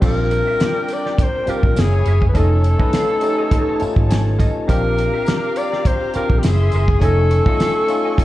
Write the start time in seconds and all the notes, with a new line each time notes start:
0.00 A#1 G3 C4 D4 F4 G4 A#4 D5 G5, kick, crash, tambourine
0.19 muted clean electric guitar stroke
0.31 muted clean electric guitar stroke, closed hi-hat, tambourine
0.47 F4 G4 E5
0.60 F4 G4 D5, snare, closed hi-hat, tambourine
0.88 muted clean electric guitar stroke, closed hi-hat, tambourine
0.93 D5
1.06 F4 G4 D5, snare
1.18 muted clean electric guitar stroke, kick, closed hi-hat, tambourine
1.23 C5
1.35 muted clean electric guitar stroke
1.46 G3 C4 D4 F4 G4, muted fingered electric bass stroke, closed hi-hat, tambourine
1.50 A#4 D5
1.63 A#1, muted clean electric guitar stroke, kick
1.76 F#1 A#3 C#4 E4 G#4 C#5 G#5, muted clean electric guitar stroke, snare, closed hi-hat, tambourine
1.80 G#4
1.93 muted clean electric guitar stroke
2.06 F#1 G#4 A#4 E5, closed hi-hat, tambourine
2.22 muted clean electric guitar stroke, kick
2.29 A3 B4
2.34 F1 C#4 D#4 F4 A4 C#5 D#5 A5, kick, closed hi-hat, tambourine
2.39 A4
2.52 muted clean electric guitar stroke
2.64 muted clean electric guitar stroke, closed hi-hat, tambourine
2.78 A3 C#4 D#4 F4 A4 B4 D#5, kick
2.93 F4 A4 F5, snare, closed hi-hat, tambourine
3.21 A3 C#4 D#4 G4, muted clean electric guitar stroke, closed hi-hat, tambourine
3.30 A4
3.38 F4 A4 D#5
3.51 F4 A4 D#5, kick, closed hi-hat
3.79 A3 C#4 D#4 F4 A5, muted fingered electric bass stroke, closed hi-hat, tambourine
3.96 G#1, muted clean electric guitar stroke, kick
4.10 G#5, muted clean electric guitar stroke, snare, closed hi-hat, tambourine
4.39 F4 A4 D#5, kick, closed hi-hat, tambourine
4.56 muted clean electric guitar stroke
4.67 A#1 C4 D4 F4 G4 A#4 D5 F5 A#5, kick, closed hi-hat, tambourine
4.85 muted clean electric guitar stroke
4.97 muted clean electric guitar stroke, closed hi-hat, tambourine
5.14 G4 A#4 E5
5.26 G4 A#4 D5, snare, closed hi-hat, tambourine
5.56 D5, muted clean electric guitar stroke, closed hi-hat, tambourine
5.72 G4 A#4 D5, snare
5.85 C5, muted clean electric guitar stroke, kick, closed hi-hat
6.01 muted clean electric guitar stroke
6.14 C4 D4 F4 G4 A#4 D5, muted fingered electric bass stroke, closed hi-hat, tambourine
6.30 A#1, muted clean electric guitar stroke, kick
6.39 A#3 G4
6.43 F#1 C#4 E4 G#4 E5 C6, muted clean electric guitar stroke, snare, closed hi-hat, tambourine
6.61 muted clean electric guitar stroke
6.72 F#1 G#4 A#4 E5, closed hi-hat, tambourine
6.88 muted clean electric guitar stroke, kick
6.99 F1 A3 C#4 D#4 F4 A4 G#5 C#6, kick, closed hi-hat, tambourine
7.04 A4 D#5
7.18 muted clean electric guitar stroke
7.31 muted clean electric guitar stroke, closed hi-hat, tambourine
7.45 A3 C#4 D#4 F4 A4 D#5, kick
7.49 F4
7.60 F4 A4 F5, snare, closed hi-hat, tambourine
7.87 A3 C#4 D#4 F4, muted clean electric guitar stroke, closed hi-hat, tambourine
8.05 F4 A4 D#5
8.18 F4 A4 D#5, kick, closed hi-hat